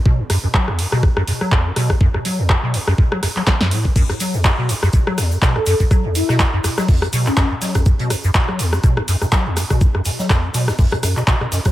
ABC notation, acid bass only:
X:1
M:4/4
L:1/16
Q:"Swing 16ths" 1/4=123
K:F#m
V:1 name="Acid bass" clef=bass
B,, F,, F,, F,, F, E,, F,, B,, F,, F,, F,, F, E,, F,, B,, F,, | F,, F,, F, E,, F,, B,, F,, F,, F,, F, F,, F, E, F,, A,, E,, | F,, F,, F, E,, F,, B,, F,, F,, F,, F, E,, F,, B,, F,, F,, F,, | F, E,, F,, B,, F,, F,, F,, F, E,, F,, B,, F,, F,, F,, F, E,, |
F,, B,, F,, F,, F,, F, E,, F,, B,, F,, F,, F,, F, E,, F,, B,, | F,, F,, F,, F, E,, F,, B,, F,, F,, F,, F,, B,, B,, B,, F,, F, |]